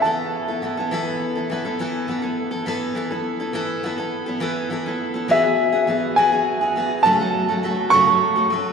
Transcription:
X:1
M:6/8
L:1/16
Q:3/8=69
K:Emix
V:1 name="Upright piano"
a8 z4 | z12 | z12 | e6 g6 |
a4 z2 c'4 z2 |]
V:2 name="Steel-string acoustic guitar"
[E,B,EA]3 [B,EA] [E,B,EA] [B,EA] [E,B,EA]3 [B,EA] [E,B,EA] [B,EA] | [E,B,EA]2 [E,B,EA] [B,EA]2 [B,EA] [E,B,EA]2 [E,B,EA] [B,EA]2 [B,EA] | [E,B,EA]2 [E,B,EA] [B,EA]2 [B,EA] [E,B,EA]2 [E,B,EA] [B,EA]2 [B,EA] | [E,B,FG] [B,FG]2 [B,FG] [E,B,FG]2 [E,B,FG] [B,FG]2 [B,FG] [E,B,FG]2 |
[F,,C,F,A,FA] [F,A,FA]2 [F,A,FA] [F,A,FA]2 [F,,C,F,A,FA] [F,A,FA]2 [F,A,FA] [F,A,FA]2 |]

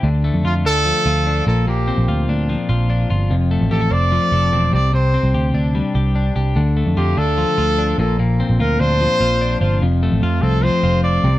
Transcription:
X:1
M:4/4
L:1/16
Q:1/4=147
K:F
V:1 name="Trumpet"
z4 F2 A8 A2 | G6 z8 z2 | z4 A2 d8 d2 | c6 z8 z2 |
z4 G2 A8 A2 | z4 B2 c8 c2 | z4 F2 A2 c4 d4 |]
V:2 name="Clean electric guitar"
D,2 A,2 F2 D2 F,2 F2 D2 B,,2 | B,,2 C2 F2 D2 F,2 F2 D2 F2 | F,,2 A,2 G A C2 F,2 A2 C2 C,2 | C,2 C2 G2 D2 G,2 G2 D2 G2 |
D,2 A,2 F2 D2 F,2 F2 D2 B,,2 | B,,2 C2 F2 D2 F,2 F2 D2 F2 | F,,2 A,2 F2 C2 F,2 F2 C2 C,2 |]
V:3 name="Picked electric bass" clef=bass
D,,3 F,, F,,2 D,,3 z D,,4 B,,,2- | B,,,3 B,,, D,,2 D,,3 z B,,,4 G,,,2 | F,,,3 A,,, A,,,2 F,,,3 z F,,,2 E,,,2 C,,2- | C,,3 C,, D,,2 D,,3 z C,,4 C,,2 |
D,,3 F,, F,,2 D,,3 z D,,4 B,,,2- | B,,,3 B,,, D,,2 D,,3 z B,,,4 G,,,2 | F,,,3 A,,, F,,2 C,,3 z F,,,4 C,,2 |]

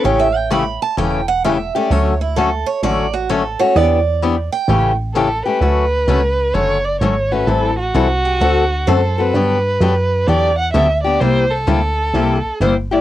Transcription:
X:1
M:4/4
L:1/16
Q:"Swing" 1/4=129
K:D
V:1 name="Steel-string acoustic guitar"
(3c2 e2 g2 b2 a2 g2 f2 e2 d2 | c2 E2 A2 c2 d2 F2 A2 c2 | d6 g4 z6 | z16 |
z6 G2 F4 =c3 z | z16 | z16 |]
V:2 name="Violin"
z16 | z16 | z12 A2 B2- | B8 c2 d2 c2 B2 |
A2 F8- F2 A2 B2- | B8 d2 f2 e2 d2 | =c2 A8- A2 c2 d2 |]
V:3 name="Steel-string acoustic guitar"
[C,E,A,CG]2 z2 [C,E,A,CG]2 z2 [C,E,A,CG]2 z2 [C,E,A,CG]2 [A,CG]2 | [D,F,A,CF]2 z2 [D,F,A,CF]2 z2 [D,F,A,CF]2 z2 [D,F,A,CF]2 [A,CF]2 | [E,B,DG]2 z2 [E,B,DG]2 z2 [C,E,A,CG]2 z2 [C,E,A,CG]2 [A,CG]2 | [D,F,A,CF]2 z2 [D,F,A,CF]2 z2 [D,F,A,CF]2 z2 [D,F,A,CF]2 [A,CF]2 |
[E,G,=CEA]2 z2 [E,G,CEA]2 z2 [D,A,CFA]2 z2 [D,A,CFA]2 [CFA]2 | [D,F,B,DG]2 z2 [D,F,B,DG]2 z2 [D,F,B,DG]2 z2 [D,F,B,DG]2 [B,DG]2 | [=C,G,_B,EG]2 z2 [C,G,B,EG]2 z2 [C,G,B,EG]2 z2 [C,G,B,EG]2 [B,EG]2 |]
V:4 name="Analog synth bass" clef=bass
A,,,8 E,,,8 | D,,8 A,,,8 | E,,8 A,,,8 | D,,4 C,,4 F,,,4 ^G,,,4 |
A,,,4 =C,,4 D,,4 F,,4 | G,,4 F,,4 E,,4 D,,4 | =C,,4 D,,4 C,,2 z2 G,,,4 |]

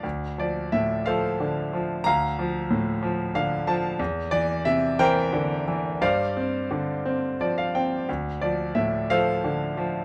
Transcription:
X:1
M:6/8
L:1/16
Q:3/8=59
K:Dm
V:1 name="Grand piano"
z2 d2 e2 [Acf]6 | [fb]8 f2 a2 | z2 d2 e2 [Bcg]6 | [cdf]8 d f g2 |
z2 d2 e2 [Acf]6 |]
V:2 name="Grand piano" clef=bass
D,,2 F,2 A,,2 F,2 D,2 F,2 | D,,2 F,2 A,,2 F,2 D,2 F,2 | E,,2 E,2 C,2 E,2 D,2 E,2 | G,,2 C2 D,2 C2 F,2 C2 |
D,,2 F,2 A,,2 F,2 D,2 F,2 |]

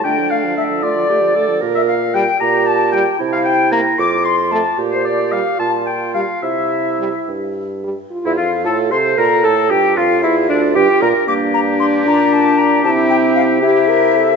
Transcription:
X:1
M:6/8
L:1/16
Q:3/8=76
K:Dm
V:1 name="Flute"
g2 f2 e2 d6 | [K:F] z e f2 g2 b2 a2 g2 | z f g2 b2 d'2 c'2 a2 | z c d2 f2 a2 g2 f2 |
e6 z6 | z e f2 a2 c'2 b2 a2 | g2 f2 e2 d2 g2 b2 | d'2 b2 c'2 b2 a2 b2 |
a2 g2 f2 e6 |]
V:2 name="Oboe"
g2 f2 e2 d6 | [K:F] z e f2 g2 b2 a2 g2 | z f g2 b2 d'2 c'2 a2 | z c d2 f2 a2 g2 f2 |
e6 z6 | z E F2 A2 c2 B2 A2 | G2 F2 E2 D2 G2 B2 | G12- |
G12 |]
V:3 name="Clarinet"
D6 F2 G2 A2 | [K:F] B4 z2 G6 | E6 F6 | G6 F6 |
E8- E z3 | z E F2 A2 c2 B2 A2 | G2 F2 E2 D2 G2 B2 | B,6 D6 |
C6 E6 |]
V:4 name="French horn"
A, F, A, F, A, F, A, F, A, F, A, F, | [K:F] z4 G, z4 z G, z | z4 B, z4 z A, z | z4 G, z4 z G, z |
z4 G, z4 z G, z | F6 A6 | F12 | D12 |
E6 G2 B2 A2 |]
V:5 name="Bassoon" clef=bass
D,12 | [K:F] B,,6 B,,6 | C,6 F,,6 | B,,6 B,,6 |
C,6 G,,6 | z E,, F,,2 A,,2 C,2 B,,2 A,,2 | G,,2 F,,2 E,,2 D,,2 G,,2 B,,2 | G,,6 B,,6 |
C,12 |]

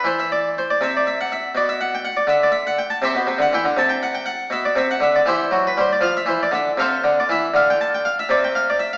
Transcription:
X:1
M:12/8
L:1/16
Q:3/8=80
K:Clyd
V:1 name="Harpsichord"
c e d2 c d e d e f e2 d e f g f d e d e f g a | [Gce]3 f g2 a g f g f2 e d e f e d [EGc]3 B c d | [K:C] f e c d e2 [Acf]3 d e2 f g a g f e d g f d e f |]
V:2 name="Harpsichord" clef=bass
E,6 C,6 B,,6 D,6 | C, B,, C, D, E, D, C,6 B,,2 C,2 D,2 E,2 F,2 G,2 | [K:C] F,2 E,2 D,2 C,2 D,2 E,2 D,6 C,6 |]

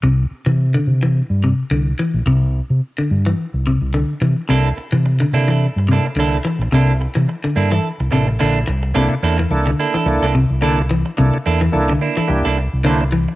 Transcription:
X:1
M:4/4
L:1/16
Q:"Swing 16ths" 1/4=108
K:Cmix
V:1 name="Clean electric guitar"
z16 | z16 | [B,DEA] z4 z [B,DEA] [DEA] z2 [B,DEA] z [B,DEA] z3 | [B,DEA] z4 z [B,DEA] [EA] z2 [B,DEA] z [B,DEA] z3 |
[B,DEA] z [B,DEA] z3 [B,DEA] [DEA] z [B,DEA] z2 [B,DEA] z3 | z2 [B,DEA] z3 [B,DE] [DEA] z [B,DEA] z2 [B,DEA] z3 |]
V:2 name="Tonewheel organ"
z16 | z16 | z16 | z16 |
[B,DEA]2 z2 [B,DEA]2 z2 [B,DEA]2 z2 [B,DEA]2 z2 | [B,DEA]2 z2 [B,DEA]2 z2 [B,DEG]2 z2 [B,DEc]2 z2 |]
V:3 name="Clean electric guitar" clef=bass
C,2 z E,2 D,2 E,2 z C,2 D,2 E,2 | C,2 z3 D,2 E,2 z C,2 D,2 E,2 | C,2 z E,2 D,2 E,2 z C,2 D,2 E,2 | C,2 z E,2 D,2 E,2 z C,2 D,2 z2 |
C,2 z E,2 D,2 E,2 z C,2 D,2 E,2 | C,2 z E,2 D,2 E,2 z3 D,2 E,2 |]
V:4 name="Fingered electric bass" clef=bass
C,,2 z C,3 C,3 G,,2 z C,,2 z B,,, | C,,3 C, z2 G,,2 z C,,2 C,,2 z C, z | C,,2 z C,3 C,3 G,,2 z C,,2 z B,,, | C,,3 C, z2 G,,2 z C,, A,,,2 B,,,2 C,,2 |
C,, z E,,2 C,,2 z2 C,, C,,2 C,,4- C,, | C,, z E,,2 C,,2 z2 C,, C,,2 C,,4- C,, |]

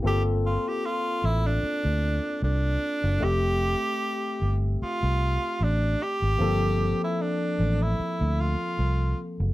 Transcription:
X:1
M:4/4
L:1/16
Q:"Swing 16ths" 1/4=76
K:Gdor
V:1 name="Tenor saxophone"
G2 F G F2 E D4- D D4 | G6- G z F4 D2 G2- | G3 E D3 E3 F4 z2 |]
V:2 name="Tine electric piano"
[B,CFA]16 | [A,CGe]16 | [F,B,CA]16 |]
V:3 name="Fingered electric bass" clef=bass
G,,,3 z3 A,,,2 z D,,2 z C,,2 z ^F,,, | F,,,3 z3 G,,,2 z C,,2 z A,,,2 z _A,,, | G,,,3 z3 A,,,2 z D,,2 z C,,2 z ^F,,, |]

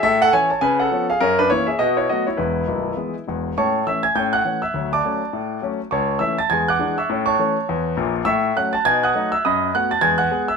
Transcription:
X:1
M:4/4
L:1/8
Q:"Swing" 1/4=204
K:A
V:1 name="Grand piano"
[Ae] [Af] [cg] [ca] [Bg] [Af]2 [G^e] | [C^A] [DB] [Ec] [Ge] [F^d] [Ec] [Fd] [Ec] | [EB]6 z2 | [cac']2 [ee'] [gg'] [=g=g'] [ff']2 [ee']- |
[ee'] [dad']6 z | [cac']2 [ee'] [aa'] [gg'] [fd'f']2 [ec'e']- | [ec'e'] [cac']6 z | [K:Bmix] [ec'e']2 [ff'] [aa'] [gg'] [fd'f']2 [ee'] |
[dbd']2 [ff'] [aa'] [gg'] [ff']2 [ee'] |]
V:2 name="Grand piano" clef=bass
A,,2 [E,CE]2 C,2 [^E,B,C]2 | F,,2 [E,^A,C]2 B,,2 [F,=A,B,]2 | [E,,,E,,]2 [B,,,,B,,,]2 [E,G,B,]2 [E,,,E,,]2 | [A,,C]2 [E,A,C]2 [A,,C]2 [E,C]2 |
[D,,F,]2 [F,A,C]2 A,,2 [F,A,C]2 | C,,2 [E,A,C]2 [E,,G,]2 [E,G,D]2 | [A,,C]2 [E,A,C]2 E,,2 [_B,,,_B,,]2 | [K:Bmix] A,,2 [F,A,C]2 [B,,D]2 [F,A,D]2 |
F,,2 [A,B,F]2 [E,,G,]2 [G,B,G]2 |]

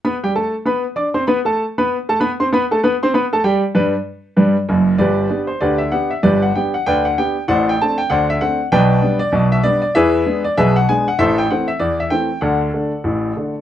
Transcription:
X:1
M:2/4
L:1/16
Q:"Swing 16ths" 1/4=97
K:G
V:1 name="Grand piano"
[B,Bb] [G,Gg] [A,Aa]2 [B,Bb]2 [Ddd'] [Ccc'] | [B,Bb] [A,Aa]2 [B,Bb]2 [A,Aa] [B,Bb] [Ccc'] | [B,Bb] [A,Aa] [B,Bb] [Ccc'] [B,Bb] [A,Aa] [G,Gg]2 | [G,,G,DB]2 z2 [G,,G,DB]2 z2 |
[GBd]3 c [GBd] e f e | [GBd] f g f [Bdg] f g2 | [cdf] g a g [cdf] e f2 | [Bdg]3 d2 e d d |
[^GBe]3 d [GBe] f ^g f | [Ace] g f e d e g2 | [Adf]8 |]
V:2 name="Grand piano" clef=bass
z8 | z8 | z8 | z6 [F,,,F,,]2 |
[G,,,G,,]2 [B,DG]2 [D,,D,]2 [B,DG]2 | [G,,,G,,]2 [B,DG]2 [D,,D,]2 [B,DG]2 | [A,,,A,,]2 [A,CD]2 [D,,D,]2 [A,CD]2 | [B,,,B,,]2 [G,B,D]2 [B,,,B,,]2 [G,B,D]2 |
[E,,E,]2 [^G,B,D]2 [B,,,B,,]2 [G,B,D]2 | [A,,,A,,]2 [E,A,C]2 [E,,E,]2 [E,A,C]2 | [D,,D,]2 [D,A,D]2 [A,,,A,,]2 [D,A,D]2 |]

